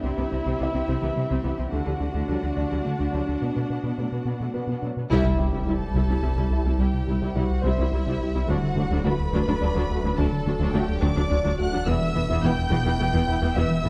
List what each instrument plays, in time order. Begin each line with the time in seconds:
Already playing: violin section G4, ambient pad G4, grand piano E5
0.03 analog synth bass C2, cello section C3, synth arpeggio sound C3, viola section C4 E4, ambient pad C4 E4 C5, violin section E5
0.17 analog synth bass C2, cello section C3, viola section B3, synth arpeggio sound C4
0.31 analog synth bass C2, cello section C3, viola section C4, synth arpeggio sound C4
0.45 analog synth bass C2, cello section C3, synth arpeggio sound C3, viola section C4
0.59 analog synth bass C2, cello section C3, french horn section G3 E4, viola section B3, synth arpeggio sound C4, grand piano E5
0.73 analog synth bass C2, cello section C3, viola section C4, synth arpeggio sound C4
0.87 analog synth bass C2, cello section C3, synth arpeggio sound C3, viola section C4
1.01 analog synth bass C2, cello section C3, synth arpeggio sound E3, viola section B3
1.16 cello section C3, analog synth bass C3, synth arpeggio sound G3, viola section C4
1.29 analog synth bass C2, cello section C3, synth arpeggio sound C3, viola section C4
1.43 analog synth bass C2, cello section C3, synth arpeggio sound E3, french horn section G3 E4, viola section B3
1.58 analog synth bass C2, cello section C3, synth arpeggio sound C4, viola section C4
1.71 analog synth bass D2, cello section D3, synth arpeggio sound D3, viola section A3 D4, ambient pad A3 D4 F#4 D5, violin section F#4 F#5
1.85 analog synth bass D2, cello section D3, viola section G3, synth arpeggio sound D4
1.99 analog synth bass D2, cello section D3, viola section A3, synth arpeggio sound D4
2.14 analog synth bass D2, cello section D3, synth arpeggio sound D3, viola section A3
2.28 analog synth bass D2, cello section D3, french horn section F#3 D4, viola section G3, synth arpeggio sound D4
2.42 analog synth bass D2, cello section D3, viola section A3, synth arpeggio sound D4
2.55 analog synth bass D2, synth arpeggio sound D3, cello section D3, viola section A3, grand piano D5
2.70 analog synth bass D2, cello section D3, synth arpeggio sound F#3, viola section G3
2.84 cello section D3, analog synth bass D3, synth arpeggio sound A3, viola section A3
2.98 analog synth bass D2, cello section D3, synth arpeggio sound D3, viola section A3
3.12 analog synth bass D2, cello section D3, french horn section F#3 D4, synth arpeggio sound F#3, viola section G3
3.27 analog synth bass D2, cello section D3, viola section A3, synth arpeggio sound D4
3.41 cello section B2, analog synth bass B2, synth arpeggio sound B3, ambient pad B3, viola section B3
3.56 cello section B2, analog synth bass B2, viola section A3, synth arpeggio sound B4
3.70 analog synth bass B2, cello section B2, viola section B3, synth arpeggio sound B4
3.83 analog synth bass B2, cello section B2, synth arpeggio sound B3, viola section B3
3.98 analog synth bass B2, cello section B2, french horn section F#3 D4, viola section A3, synth arpeggio sound B4
4.12 analog synth bass B2, cello section B2, viola section B3, synth arpeggio sound B4
4.25 analog synth bass B2, cello section B2, synth arpeggio sound B3, viola section B3
4.40 analog synth bass B2, cello section B2, viola section A3, synth arpeggio sound D4
4.54 cello section B2, analog synth bass B3, viola section B3, synth arpeggio sound F#4, grand piano B4
4.67 analog synth bass B2, cello section B2, synth arpeggio sound B3, viola section B3
4.82 analog synth bass B2, cello section B2, french horn section F#3 D4, viola section A3, synth arpeggio sound D4
4.97 analog synth bass B2, cello section B2, viola section B3, synth arpeggio sound B4
5.10 analog synth bass C2, double bass section C2, cello section C2, sub bass C2, synth arpeggio sound C3, ambient pad G3 E4 G4 C5, viola section G3 E4, violin section E4 E5, impact
5.26 analog synth bass C3
5.38 double bass section C2, cello section C2, analog synth bass C3, synth arpeggio sound G3, viola section G3 E4, grand piano G4
5.53 analog synth bass C2, cello section C2, synth arpeggio sound C3, viola section G3 E4
5.65 double bass section C2, cello section C2, analog synth bass C3, french horn section G3 E4, synth arpeggio sound G3, viola section G3 E4, violin section A4 A5
5.80 analog synth bass C2
5.94 analog synth bass C2, double bass section C2, cello section C2, synth arpeggio sound C3, viola section G3 E4
6.08 analog synth bass C2, cello section C2, viola section G3 E4, synth arpeggio sound C4
6.22 analog synth bass C2, double bass section C2, cello section C2, viola section G3 E4, synth arpeggio sound C4
6.35 analog synth bass C2, cello section C2, synth arpeggio sound C3, viola section G3 E4
6.50 analog synth bass C2, french horn section G3 E4
6.64 analog synth bass C2, cello section C2, viola section G3 E4, synth arpeggio sound C4
6.78 analog synth bass C2, double bass section C2, cello section C2, synth arpeggio sound C3, viola section G3 E4, violin section G4 G5
6.93 analog synth bass C3
7.07 double bass section C2, cello section C2, analog synth bass C3, synth arpeggio sound G3, viola section G3 E4
7.22 analog synth bass C2, cello section C2, synth arpeggio sound C3, viola section G3 E4
7.36 double bass section C2, cello section C2, analog synth bass C3, synth arpeggio sound G3, french horn section G3 E4, viola section G3 E4, violin section F#4 F#5
7.50 analog synth bass C2
7.62 double bass section C2, cello section C2, analog synth bass C2, synth arpeggio sound C3, viola section G3 E4, violin section E4 E5, grand piano C5
7.78 cello section C2, analog synth bass C2, viola section G3 E4, synth arpeggio sound C4
7.92 double bass section C2, cello section C2, analog synth bass C2, viola section G3 E4, synth arpeggio sound C4
8.06 cello section C2, analog synth bass C2, synth arpeggio sound C3, viola section G3 E4
8.21 analog synth bass C2, french horn section G3 E4
8.35 cello section C2, analog synth bass C2, viola section G3 E4, synth arpeggio sound C4
8.48 sub bass D1, double bass section D2, cello section D2, analog synth bass D2, synth arpeggio sound D3, ambient pad F#3 D4 A4 D5, viola section F#3 D4, violin section F#4 F#5
8.63 analog synth bass D3
8.76 cello section D2, double bass section D2, analog synth bass D3, viola section F#3 D4, synth arpeggio sound A3
8.90 analog synth bass D2, cello section D2, synth arpeggio sound D3, viola section F#3 D4
9.04 cello section D2, double bass section D2, analog synth bass D3, viola section F#3 D4, synth arpeggio sound A3, french horn section A3 F#4, violin section B4 B5
9.19 analog synth bass D2
9.32 analog synth bass D2, cello section D2, double bass section D2, synth arpeggio sound D3, viola section F#3 D4
9.47 cello section D2, analog synth bass D2, viola section F#3 D4, synth arpeggio sound D4
9.61 double bass section D2, analog synth bass D2, cello section D2, viola section F#3 D4, synth arpeggio sound D4, grand piano D5
9.75 cello section D2, analog synth bass D2, synth arpeggio sound D3, viola section F#3 D4
9.90 analog synth bass D2, french horn section A3 F#4
10.04 cello section D2, analog synth bass D2, viola section F#3 D4, synth arpeggio sound D4
10.17 double bass section D2, cello section D2, analog synth bass D2, synth arpeggio sound D3, viola section F#3 D4, violin section A4 A5
10.32 analog synth bass D3
10.46 cello section D2, double bass section D2, analog synth bass D3, viola section F#3 D4, synth arpeggio sound A3
10.59 analog synth bass D2, cello section D2, synth arpeggio sound D3, viola section F#3 D4
10.73 cello section D2, double bass section D2, analog synth bass D3, viola section F#3 D4, synth arpeggio sound A3, french horn section A3 F#4, violin section G4 G5
10.89 analog synth bass D2
11.01 cello section D2, double bass section D2, analog synth bass D2, synth arpeggio sound D3, viola section F#3 D4, violin section D5 D6
11.16 cello section D2, analog synth bass D2, viola section F#3 D4, synth arpeggio sound D4
11.30 cello section D2, analog synth bass D2, double bass section D2, viola section F#3 D4, synth arpeggio sound D4
11.44 cello section D2, analog synth bass D2, synth arpeggio sound D3, viola section F#3 D4
11.59 analog synth bass D2, french horn section A3 F#4, violin section F#5 F#6
11.73 cello section D2, analog synth bass D2, viola section F#3 D4, synth arpeggio sound D4
11.86 double bass section E1, sub bass E1, cello section E2, analog synth bass E2, viola section E3 B3, synth arpeggio sound E3, ambient pad E3 B3 B4 E5, violin section E5 E6
12.02 analog synth bass E3
12.15 double bass section E1, cello section E2, viola section E3 B3, analog synth bass E3, synth arpeggio sound B3
12.29 cello section E2, analog synth bass E2, synth arpeggio sound E3, viola section E3 B3
12.42 double bass section E1, cello section E2, analog synth bass E3, viola section E3 B3, french horn section B3 E4, synth arpeggio sound B3, violin section G5 G6
12.58 analog synth bass E2
12.70 double bass section E1, cello section E2, analog synth bass E2, viola section E3 B3, synth arpeggio sound E3
12.85 cello section E2, analog synth bass E2, viola section E3 B3, synth arpeggio sound E4
12.99 double bass section E1, cello section E2, analog synth bass E2, viola section E3 B3, synth arpeggio sound E4
13.13 cello section E2, analog synth bass E2, synth arpeggio sound E3, viola section E3 B3
13.27 analog synth bass E2, french horn section B3 E4
13.41 cello section E2, analog synth bass E2, viola section E3 B3, synth arpeggio sound E4
13.55 double bass section E1, cello section E2, analog synth bass E2, viola section E3 B3, synth arpeggio sound E3, grand piano E5, violin section E5 E6
13.71 analog synth bass E3
13.84 double bass section E1, cello section E2, viola section E3 B3, analog synth bass E3, synth arpeggio sound B3